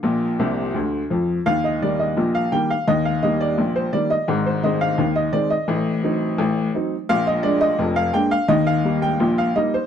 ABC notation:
X:1
M:2/4
L:1/16
Q:1/4=85
K:Eb
V:1 name="Upright piano"
[Ff]4 z4 | f e d e2 f g f | e f e d2 c d e- | e c e f2 e d e- |
e6 z2 | f e d e2 f g f | e f2 g2 f e c |]
V:2 name="Upright piano" clef=bass
[B,,,B,,]2 [C,,C,]2 [D,,D,]2 [F,,F,]2 | [E,,E,]2 [E,G,B,]2 [B,,,B,,]2 [E,G,B,]2 | [E,,E,]2 [E,G,B,]2 [B,,,B,,]2 [E,G,B,]2 | [A,,,A,,]2 [E,A,C]2 [E,,E,]2 [E,A,C]2 |
[=A,,,=A,,]2 [^F,CE]2 [A,,,A,,]2 [F,CE]2 | [B,,,B,,]2 [A,B,D]2 [F,,,F,,]2 [A,B,D]2 | [E,,E,]2 [G,B,E]2 [B,,,B,,]2 [G,B,E]2 |]